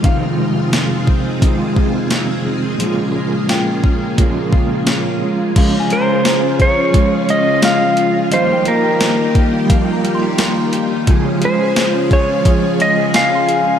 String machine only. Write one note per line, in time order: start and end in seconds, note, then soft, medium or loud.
0.00 5.52 F4 medium
0.04 2.78 D#3 medium
0.04 5.52 G#3 medium
0.04 2.78 C4 medium
0.04 5.52 G#4 medium
2.80 5.53 C#3 medium
2.80 5.53 A#3 medium
5.56 8.29 C#3 medium
5.56 8.29 F3 medium
5.56 8.29 G#3 medium
5.56 11.04 F4 medium
5.56 8.29 G#4 medium
8.33 11.05 D#3 medium
8.33 11.05 G3 medium
8.33 11.05 A#3 medium
8.33 11.05 G4 loud
11.08 13.79 C#3 medium
11.08 13.79 F3 medium
11.08 13.79 G#3 medium
11.08 13.79 F4 medium
11.08 13.79 G#4 medium